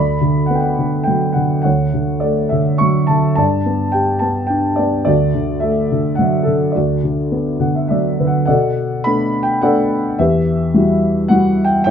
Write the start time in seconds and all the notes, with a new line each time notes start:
Already playing: D2 D5 B5
0.21 D3
0.46 B3 F#5
0.55 G5
0.61 F#5
0.79 D3
1.04 F#3 G5
1.33 D3 F#5
1.62 D2 C#5 F#5
1.94 D3
2.20 A3 D5
2.49 D3 E5
2.78 F#3 C#6
3.07 D3 A5
3.35 G2 D5 A5
3.66 B3
3.92 G4 G5
4.19 B3 A5
4.47 D4 G5
4.76 B3 D5
5.05 D2 F#4 D5
5.35 D3
5.60 A3 E5
5.92 D3
6.15 F#3 F#5
6.43 A4
6.47 D3
6.72 D2 F#4 D5
7.04 D3
7.32 B3
7.60 D3 F#5
7.75 E5
7.88 F#3 D5 E5
8.20 D3 B4
8.27 F#5
8.46 B2 A4 D5 F#5
9.04 A3 B3 D4 B5
9.43 G5
9.62 A3 B3 D4 A4 D5 F#5
10.19 E2 G4 B4 E5
10.74 G3 E4 F#4
11.28 G3 E4 F#4 F#5
11.64 G5
11.84 A2 C#5 E5 G5